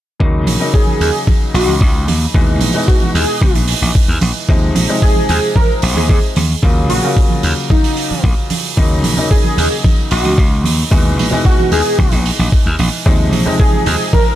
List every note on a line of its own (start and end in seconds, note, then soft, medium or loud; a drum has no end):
0.20 0.47 D#2 medium
0.20 0.57 C#3 medium
0.20 0.57 F#3 medium
0.20 0.57 A#3 medium
0.20 0.58 D#4 medium
0.20 kick loud
0.47 0.56 A#1 medium
0.47 open hi-hat loud
0.47 high conga medium
0.59 2.31 C#3 medium
0.59 2.31 F#3 medium
0.59 2.31 A#3 medium
0.59 2.32 D#4 medium
0.74 0.98 G#4 medium
0.74 kick loud
0.87 high conga medium
1.01 1.10 D#2 medium
1.01 1.20 G#4 medium
1.01 open hi-hat medium
1.27 kick loud
1.27 high conga medium
1.54 1.68 A#1 medium
1.54 1.74 F#4 medium
1.54 open hi-hat loud
1.67 1.76 C#2 medium
1.67 high conga medium
1.81 2.08 C#2 medium
1.81 kick loud
2.08 2.26 D#2 medium
2.08 open hi-hat loud
2.08 high conga medium
2.34 2.61 D#2 medium
2.34 2.72 B2 medium
2.34 2.72 E3 medium
2.34 2.72 G#3 medium
2.34 2.72 D#4 medium
2.34 kick loud
2.61 2.70 A#1 medium
2.61 open hi-hat loud
2.61 high conga medium
2.74 4.45 B2 medium
2.74 4.46 E3 medium
2.74 4.46 G#3 medium
2.74 4.46 D#4 medium
2.87 2.96 F#4 medium
2.87 kick loud
3.01 3.10 F#4 medium
3.01 high conga medium
3.14 3.24 D#2 medium
3.14 3.55 G#4 medium
3.14 open hi-hat loud
3.42 3.51 C#2 medium
3.42 kick loud
3.42 high conga medium
3.55 3.73 A#1 medium
3.55 open hi-hat medium
3.68 open hi-hat loud
3.82 3.91 A#1 medium
3.82 high conga medium
3.95 kick loud
4.08 4.17 D#2 loud
4.21 4.31 A#1 medium
4.21 open hi-hat medium
4.21 high conga medium
4.49 4.76 D#2 medium
4.49 4.86 C3 medium
4.49 4.86 F3 medium
4.49 4.86 G#3 medium
4.49 4.86 D#4 medium
4.49 kick loud
4.75 4.85 A#1 medium
4.75 open hi-hat loud
4.75 high conga loud
4.88 6.34 C3 medium
4.88 6.35 F3 medium
4.88 6.35 G#3 medium
4.88 6.35 D#4 medium
5.02 5.26 G#4 medium
5.02 kick loud
5.16 high conga medium
5.29 5.38 D#2 medium
5.29 5.49 G#4 medium
5.29 open hi-hat loud
5.56 5.76 A#4 medium
5.56 kick loud
5.56 high conga medium
5.82 5.96 A#1 medium
5.82 open hi-hat loud
5.95 6.05 D#2 medium
5.95 6.05 G#4 medium
5.95 high conga medium
6.09 6.18 D#2 medium
6.09 6.18 G#4 medium
6.09 kick loud
6.36 6.54 D#2 medium
6.36 open hi-hat loud
6.36 high conga loud
6.62 6.90 D#2 medium
6.62 7.00 C#3 medium
6.62 7.00 F#3 medium
6.62 7.00 A#3 medium
6.62 7.00 F4 medium
6.62 kick loud
6.89 6.99 A#1 medium
6.89 7.09 F#4 medium
6.89 open hi-hat loud
6.89 high conga medium
7.03 8.74 C#3 medium
7.03 8.74 F#3 medium
7.03 8.74 A#3 medium
7.03 8.75 F4 medium
7.17 kick loud
7.30 high conga medium
7.43 7.52 D#2 medium
7.43 open hi-hat medium
7.70 8.24 D#4 medium
7.70 kick loud
7.70 high conga medium
7.84 open hi-hat medium
7.97 open hi-hat medium
8.11 muted slap bass stroke soft
8.11 high conga medium
8.24 8.33 A#1 medium
8.24 kick loud
8.50 open hi-hat loud
8.50 high conga medium
8.77 9.04 D#2 medium
8.77 9.14 C#3 medium
8.77 9.14 F#3 medium
8.77 9.15 A#3 medium
8.77 9.15 D#4 medium
8.77 kick loud
9.04 9.13 A#1 medium
9.04 open hi-hat loud
9.04 high conga medium
9.17 10.88 C#3 medium
9.17 10.88 F#3 medium
9.17 10.89 A#3 medium
9.17 10.89 D#4 medium
9.17 low conga medium
9.31 9.55 G#4 medium
9.31 kick loud
9.44 high conga medium
9.57 9.67 D#2 medium
9.57 9.77 G#4 medium
9.57 open hi-hat loud
9.57 low conga medium
9.84 kick loud
9.84 high conga medium
10.11 10.25 A#1 medium
10.11 10.31 F#4 medium
10.11 open hi-hat loud
10.25 10.34 C#2 medium
10.25 high conga medium
10.38 10.65 C#2 medium
10.38 kick loud
10.64 10.83 D#2 medium
10.64 open hi-hat loud
10.64 high conga medium
10.91 11.18 D#2 medium
10.91 11.28 B2 medium
10.91 11.29 E3 medium
10.91 11.29 G#3 medium
10.91 11.29 D#4 medium
10.91 kick loud
11.18 11.27 A#1 medium
11.18 open hi-hat loud
11.18 high conga medium
11.31 13.02 B2 medium
11.31 13.02 E3 medium
11.31 13.03 G#3 medium
11.31 13.03 D#4 medium
11.31 low conga medium
11.45 11.54 F#4 medium
11.45 kick loud
11.58 11.67 F#4 medium
11.58 high conga medium
11.72 11.81 D#2 medium
11.72 12.12 G#4 loud
11.72 open hi-hat loud
11.72 low conga medium
11.99 12.08 C#2 medium
11.99 kick loud
11.99 high conga medium
12.12 12.30 A#1 medium
12.12 open hi-hat medium
12.12 low conga medium
12.26 open hi-hat loud
12.39 12.48 A#1 medium
12.39 high conga medium
12.52 kick loud
12.66 12.75 D#2 loud
12.79 12.88 A#1 medium
12.79 open hi-hat loud
12.79 high conga medium
13.06 13.33 D#2 medium
13.06 13.43 C3 medium
13.06 13.43 F3 medium
13.06 13.43 G#3 medium
13.06 13.43 D#4 medium
13.06 kick loud
13.33 13.42 A#1 medium
13.33 open hi-hat medium
13.33 high conga medium
13.45 14.35 C3 medium
13.45 14.35 F3 medium
13.45 14.35 G#3 medium
13.45 14.35 D#4 medium
13.45 low conga medium
13.59 13.84 G#4 medium
13.59 kick loud
13.73 high conga medium
13.86 13.95 D#2 medium
13.86 14.06 G#4 medium
13.86 open hi-hat medium
13.86 low conga medium
14.13 14.33 A#4 medium
14.13 kick loud
14.13 high conga medium